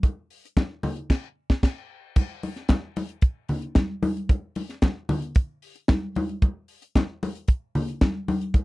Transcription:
0.03 kick loud
0.03 closed hi-hat soft
0.03 muted conga soft
0.30 open hi-hat medium
0.45 closed hi-hat medium
0.57 kick loud
0.57 snare loud
0.57 closed hi-hat medium
0.57 high conga medium
0.83 open hi-hat medium
0.83 muted conga medium
0.83 low conga medium
0.97 closed hi-hat soft
1.10 kick loud
1.10 snare loud
1.10 crash medium
1.50 kick medium
1.50 snare loud
1.63 kick loud
1.63 snare loud
1.63 crash medium
2.16 kick loud
2.16 crash medium
2.16 muted conga soft
2.43 open hi-hat medium
2.43 muted conga soft
2.56 snare soft
2.56 closed hi-hat soft
2.69 kick loud
2.69 snare loud
2.69 closed hi-hat medium
2.69 high conga medium
2.96 open hi-hat medium
2.96 muted conga medium
3.09 closed hi-hat soft
3.22 kick loud
3.22 closed hi-hat medium
3.49 open hi-hat medium
3.49 low conga medium
3.62 closed hi-hat soft
3.75 kick loud
3.75 snare loud
3.75 closed hi-hat medium
3.75 high conga medium
4.03 open hi-hat medium
4.03 high conga loud
4.17 closed hi-hat soft
4.29 kick loud
4.29 closed hi-hat medium
4.29 muted conga medium
4.55 open hi-hat medium
4.55 muted conga soft
4.69 snare soft
4.69 closed hi-hat medium
4.82 kick loud
4.82 snare loud
4.82 closed hi-hat medium
4.82 high conga medium
5.09 open hi-hat medium
5.09 muted conga medium
5.09 low conga medium
5.22 closed hi-hat soft
5.35 kick loud
5.35 closed hi-hat medium
5.62 open hi-hat medium
5.75 closed hi-hat soft
5.88 kick loud
5.88 snare loud
5.88 closed hi-hat medium
5.88 high conga medium
6.15 open hi-hat medium
6.15 high conga loud
6.29 closed hi-hat soft
6.42 kick loud
6.42 closed hi-hat soft
6.42 muted conga soft
6.68 open hi-hat medium
6.82 closed hi-hat medium
6.95 kick medium
6.95 snare loud
6.95 closed hi-hat medium
6.95 high conga medium
7.23 open hi-hat medium
7.23 muted conga medium
7.35 closed hi-hat soft
7.48 kick loud
7.48 closed hi-hat medium
7.75 open hi-hat medium
7.75 low conga medium
7.88 closed hi-hat soft
8.01 kick loud
8.01 snare loud
8.01 closed hi-hat medium
8.01 high conga medium
8.28 open hi-hat medium
8.28 high conga medium
8.41 closed hi-hat soft
8.54 kick loud
8.54 closed hi-hat medium
8.54 muted conga soft

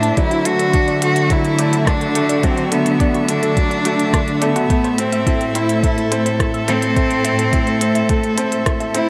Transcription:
0.00 0.14 A2 medium
0.00 0.17 A2 medium
0.00 0.19 A3 medium
0.00 9.09 A3 medium
0.00 0.19 C4 medium
0.00 0.19 D4 loud
0.00 0.19 E4 loud
0.00 0.19 A4 loud
0.00 1.98 C5 medium
0.00 9.09 E5 medium
0.00 0.19 A5 loud
0.00 0.11 A5 loud
0.00 closed hi-hat soft
0.17 4.67 D3 medium
0.17 4.70 D3 medium
0.17 0.33 F#3 loud
0.17 0.48 E4 loud
0.17 0.30 D5 medium
0.17 kick loud
0.17 closed hi-hat soft
0.31 0.40 F#4 medium
0.31 closed hi-hat soft
0.39 6.13 F#4 medium
0.45 0.73 A3 medium
0.45 1.02 F#4 loud
0.45 closed hi-hat medium
0.59 0.68 A4 medium
0.59 closed hi-hat soft
0.73 1.01 D4 loud
0.73 kick loud
0.73 closed hi-hat soft
0.88 1.00 D5 medium
0.88 closed hi-hat soft
1.02 1.29 A3 medium
1.02 1.10 F#4 medium
1.02 1.33 F#4 loud
1.02 closed hi-hat medium
1.16 closed hi-hat soft
1.30 1.57 F#3 medium
1.30 1.89 E4 loud
1.30 1.39 A4 medium
1.30 kick loud
1.30 closed hi-hat soft
1.45 closed hi-hat soft
1.58 1.86 A3 medium
1.58 1.71 D5 medium
1.58 closed hi-hat medium
1.72 1.81 F#4 medium
1.72 closed hi-hat soft
1.87 2.14 D4 medium
1.87 2.46 D4 loud
1.87 kick loud
1.87 cross-stick medium
1.87 closed hi-hat soft
2.01 2.10 A4 medium
2.01 closed hi-hat soft
2.15 2.31 A3 medium
2.15 closed hi-hat medium
2.29 2.42 D5 medium
2.29 closed hi-hat soft
2.43 2.60 F#3 loud
2.43 2.72 C4 loud
2.43 2.52 F#4 medium
2.43 kick loud
2.43 closed hi-hat soft
2.57 closed hi-hat soft
2.72 2.99 A3 medium
2.72 3.31 B3 loud
2.72 2.80 A4 medium
2.72 closed hi-hat medium
2.86 closed hi-hat soft
3.00 3.27 D4 loud
3.00 3.13 D5 medium
3.00 kick loud
3.00 closed hi-hat soft
3.14 3.23 F#4 medium
3.14 closed hi-hat soft
3.29 3.56 A3 medium
3.29 4.44 D4 loud
3.29 closed hi-hat medium
3.42 3.51 A4 medium
3.42 closed hi-hat soft
3.57 3.84 F#3 medium
3.57 kick loud
3.57 closed hi-hat soft
3.71 3.84 D5 medium
3.71 closed hi-hat soft
3.85 4.12 A3 medium
3.85 3.94 F#4 medium
3.85 closed hi-hat medium
3.99 closed hi-hat soft
4.13 4.40 D4 medium
4.13 4.22 A4 medium
4.13 kick loud
4.13 cross-stick medium
4.13 closed hi-hat soft
4.28 closed hi-hat soft
4.41 4.58 A3 loud
4.41 5.00 B3 loud
4.41 4.54 D5 medium
4.41 closed hi-hat medium
4.56 4.64 F#4 medium
4.56 closed hi-hat soft
4.69 9.09 A2 medium
4.69 9.09 A2 loud
4.69 4.86 A3 loud
4.69 kick loud
4.69 closed hi-hat soft
4.79 9.09 A4 medium
4.84 4.93 C5 medium
4.84 closed hi-hat soft
4.98 5.25 C4 medium
4.98 5.57 C4 loud
4.98 closed hi-hat medium
5.12 5.25 E5 medium
5.12 closed hi-hat soft
5.26 5.53 E4 loud
5.26 5.35 A4 medium
5.26 kick loud
5.26 closed hi-hat soft
5.41 closed hi-hat soft
5.55 5.82 C4 medium
5.55 5.83 E4 medium
5.55 5.64 C5 medium
5.55 closed hi-hat medium
5.69 closed hi-hat soft
5.83 6.10 A3 medium
5.83 6.36 E4 medium
5.83 5.96 E5 medium
5.83 kick loud
5.83 closed hi-hat soft
5.97 6.06 A4 medium
5.97 closed hi-hat soft
6.12 6.38 C4 loud
6.12 closed hi-hat medium
6.26 6.34 C5 medium
6.26 closed hi-hat soft
6.40 6.67 E4 medium
6.40 kick loud
6.40 cross-stick medium
6.40 closed hi-hat soft
6.54 6.67 E5 medium
6.54 closed hi-hat soft
6.68 8.62 C4 loud
6.68 6.84 C4 loud
6.68 6.77 A4 medium
6.68 closed hi-hat medium
6.82 closed hi-hat soft
6.96 7.13 A3 loud
6.96 7.05 C5 medium
6.96 kick loud
6.96 closed hi-hat soft
7.11 closed hi-hat soft
7.25 7.52 C4 medium
7.25 7.37 E5 medium
7.25 closed hi-hat medium
7.39 7.47 A4 medium
7.39 closed hi-hat soft
7.53 7.80 E4 loud
7.53 kick loud
7.53 closed hi-hat soft
7.67 7.76 C5 medium
7.67 closed hi-hat soft
7.81 8.08 C4 medium
7.81 closed hi-hat medium
7.95 8.08 E5 medium
7.95 closed hi-hat soft
8.09 8.36 A3 medium
8.09 8.18 A4 medium
8.09 kick loud
8.09 closed hi-hat soft
8.23 closed hi-hat soft
8.37 8.65 C4 loud
8.37 8.46 A5 medium
8.37 closed hi-hat medium
8.52 closed hi-hat soft
8.66 8.93 E4 medium
8.66 8.71 E5 medium
8.66 kick loud
8.66 cross-stick medium
8.66 closed hi-hat soft
8.80 8.93 E5 medium
8.80 closed hi-hat soft
8.94 9.09 C4 loud
8.94 9.09 E4 loud
8.94 closed hi-hat medium

